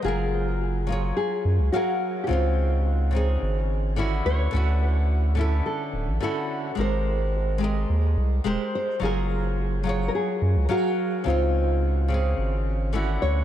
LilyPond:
<<
  \new Staff \with { instrumentName = "Nylon-string guitar" } { \time 4/4 \key ges \lydian \tempo 4 = 107 aes'2 aes'4 ges'8.~ ges'32 g'32 | f'4. r2 cis''8~ | cis''2 a'4 a'4 | bes'2. r8 c''8 |
aes'4.~ aes'16. bes'32 aes'4 ges'4 | f'4. r2 cis''16. r32 | }
  \new Staff \with { instrumentName = "Nylon-string guitar" } { \time 4/4 \key ges \lydian <ges f' aes' bes'>4. <ges f' aes' des''>4. <ges aes' bes' f''>4 | <des c' ees' f'>4. <des c' ees' aes'>4. <d des' fes' ges'>4 | <d cis' e' fis'>4. <d cis' e' a'>4. <d cis' e' fis'>4 | <aes g' bes' c''>4. <aes g' bes' ees''>4. <aes g' bes' c''>4 |
<ges f' aes' bes'>4. <ges f' aes' des''>4. <ges aes' bes' f''>4 | <des c' ees' f'>4. <des c' ees' aes'>4. <d des' fes' ges'>4 | }
  \new Staff \with { instrumentName = "Analog synth bass" } { \clef bass \time 4/4 \key ges \lydian ges,,2 r8 ges,16 des,16 r4 | des,2 aes,,4. d,8 | d,2 r8 d,,16 a,,16 r4 | aes,,2 ees,8 c,8 ees,,16 r8. |
ges,,2 r8 ges,16 des,16 r4 | des,2 aes,,4. d,8 | }
>>